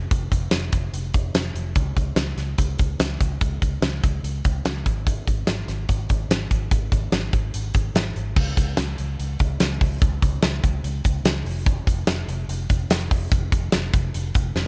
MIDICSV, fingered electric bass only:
0, 0, Header, 1, 2, 480
1, 0, Start_track
1, 0, Key_signature, -5, "major"
1, 0, Tempo, 412371
1, 133, Time_signature, 4, 2, 24, 8
1, 17079, End_track
2, 0, Start_track
2, 0, Title_t, "Fingered electric bass"
2, 0, Program_c, 0, 33
2, 133, Note_on_c, 0, 29, 97
2, 330, Note_off_c, 0, 29, 0
2, 369, Note_on_c, 0, 29, 100
2, 567, Note_off_c, 0, 29, 0
2, 598, Note_on_c, 0, 29, 91
2, 801, Note_off_c, 0, 29, 0
2, 847, Note_on_c, 0, 29, 93
2, 1046, Note_off_c, 0, 29, 0
2, 1084, Note_on_c, 0, 29, 88
2, 1284, Note_off_c, 0, 29, 0
2, 1333, Note_on_c, 0, 29, 87
2, 1530, Note_off_c, 0, 29, 0
2, 1563, Note_on_c, 0, 29, 90
2, 1764, Note_off_c, 0, 29, 0
2, 1801, Note_on_c, 0, 29, 95
2, 2003, Note_off_c, 0, 29, 0
2, 2044, Note_on_c, 0, 37, 100
2, 2244, Note_off_c, 0, 37, 0
2, 2286, Note_on_c, 0, 37, 88
2, 2486, Note_off_c, 0, 37, 0
2, 2514, Note_on_c, 0, 37, 96
2, 2719, Note_off_c, 0, 37, 0
2, 2755, Note_on_c, 0, 37, 94
2, 2960, Note_off_c, 0, 37, 0
2, 3008, Note_on_c, 0, 37, 86
2, 3207, Note_off_c, 0, 37, 0
2, 3254, Note_on_c, 0, 37, 86
2, 3451, Note_off_c, 0, 37, 0
2, 3482, Note_on_c, 0, 37, 93
2, 3684, Note_off_c, 0, 37, 0
2, 3730, Note_on_c, 0, 37, 81
2, 3929, Note_off_c, 0, 37, 0
2, 3968, Note_on_c, 0, 37, 98
2, 4167, Note_off_c, 0, 37, 0
2, 4211, Note_on_c, 0, 37, 89
2, 4409, Note_off_c, 0, 37, 0
2, 4440, Note_on_c, 0, 37, 96
2, 4643, Note_off_c, 0, 37, 0
2, 4699, Note_on_c, 0, 37, 96
2, 4894, Note_off_c, 0, 37, 0
2, 4927, Note_on_c, 0, 37, 93
2, 5127, Note_off_c, 0, 37, 0
2, 5179, Note_on_c, 0, 37, 98
2, 5374, Note_off_c, 0, 37, 0
2, 5412, Note_on_c, 0, 37, 87
2, 5610, Note_off_c, 0, 37, 0
2, 5655, Note_on_c, 0, 32, 87
2, 6049, Note_off_c, 0, 32, 0
2, 6136, Note_on_c, 0, 32, 91
2, 6333, Note_off_c, 0, 32, 0
2, 6370, Note_on_c, 0, 32, 82
2, 6569, Note_off_c, 0, 32, 0
2, 6607, Note_on_c, 0, 32, 102
2, 6807, Note_off_c, 0, 32, 0
2, 6859, Note_on_c, 0, 32, 99
2, 7055, Note_off_c, 0, 32, 0
2, 7101, Note_on_c, 0, 32, 87
2, 7295, Note_off_c, 0, 32, 0
2, 7321, Note_on_c, 0, 32, 84
2, 7524, Note_off_c, 0, 32, 0
2, 7575, Note_on_c, 0, 32, 88
2, 7772, Note_off_c, 0, 32, 0
2, 7813, Note_on_c, 0, 32, 100
2, 8011, Note_off_c, 0, 32, 0
2, 8056, Note_on_c, 0, 32, 97
2, 8253, Note_off_c, 0, 32, 0
2, 8282, Note_on_c, 0, 32, 90
2, 8485, Note_off_c, 0, 32, 0
2, 8533, Note_on_c, 0, 32, 96
2, 8731, Note_off_c, 0, 32, 0
2, 8778, Note_on_c, 0, 32, 90
2, 8974, Note_off_c, 0, 32, 0
2, 9018, Note_on_c, 0, 32, 90
2, 9214, Note_off_c, 0, 32, 0
2, 9247, Note_on_c, 0, 32, 94
2, 9448, Note_off_c, 0, 32, 0
2, 9495, Note_on_c, 0, 32, 93
2, 9692, Note_off_c, 0, 32, 0
2, 9735, Note_on_c, 0, 37, 97
2, 9933, Note_off_c, 0, 37, 0
2, 9979, Note_on_c, 0, 37, 85
2, 10175, Note_off_c, 0, 37, 0
2, 10219, Note_on_c, 0, 37, 100
2, 10415, Note_off_c, 0, 37, 0
2, 10461, Note_on_c, 0, 37, 96
2, 10656, Note_off_c, 0, 37, 0
2, 10699, Note_on_c, 0, 37, 90
2, 10895, Note_off_c, 0, 37, 0
2, 10941, Note_on_c, 0, 37, 90
2, 11136, Note_off_c, 0, 37, 0
2, 11184, Note_on_c, 0, 37, 96
2, 11378, Note_off_c, 0, 37, 0
2, 11421, Note_on_c, 0, 37, 90
2, 11617, Note_off_c, 0, 37, 0
2, 11661, Note_on_c, 0, 37, 106
2, 11857, Note_off_c, 0, 37, 0
2, 11901, Note_on_c, 0, 37, 102
2, 12097, Note_off_c, 0, 37, 0
2, 12134, Note_on_c, 0, 37, 96
2, 12333, Note_off_c, 0, 37, 0
2, 12380, Note_on_c, 0, 37, 95
2, 12576, Note_off_c, 0, 37, 0
2, 12612, Note_on_c, 0, 37, 90
2, 12812, Note_off_c, 0, 37, 0
2, 12858, Note_on_c, 0, 37, 91
2, 13055, Note_off_c, 0, 37, 0
2, 13081, Note_on_c, 0, 37, 88
2, 13285, Note_off_c, 0, 37, 0
2, 13328, Note_on_c, 0, 29, 94
2, 13726, Note_off_c, 0, 29, 0
2, 13821, Note_on_c, 0, 29, 108
2, 14017, Note_off_c, 0, 29, 0
2, 14054, Note_on_c, 0, 29, 94
2, 14252, Note_off_c, 0, 29, 0
2, 14293, Note_on_c, 0, 29, 105
2, 14492, Note_off_c, 0, 29, 0
2, 14530, Note_on_c, 0, 29, 101
2, 14730, Note_off_c, 0, 29, 0
2, 14782, Note_on_c, 0, 29, 86
2, 14977, Note_off_c, 0, 29, 0
2, 15010, Note_on_c, 0, 29, 90
2, 15210, Note_off_c, 0, 29, 0
2, 15264, Note_on_c, 0, 29, 101
2, 15458, Note_off_c, 0, 29, 0
2, 15499, Note_on_c, 0, 29, 105
2, 15695, Note_off_c, 0, 29, 0
2, 15743, Note_on_c, 0, 29, 106
2, 15938, Note_off_c, 0, 29, 0
2, 15976, Note_on_c, 0, 29, 97
2, 16174, Note_off_c, 0, 29, 0
2, 16219, Note_on_c, 0, 29, 105
2, 16415, Note_off_c, 0, 29, 0
2, 16467, Note_on_c, 0, 29, 95
2, 16660, Note_off_c, 0, 29, 0
2, 16707, Note_on_c, 0, 29, 102
2, 16900, Note_off_c, 0, 29, 0
2, 16940, Note_on_c, 0, 29, 102
2, 17079, Note_off_c, 0, 29, 0
2, 17079, End_track
0, 0, End_of_file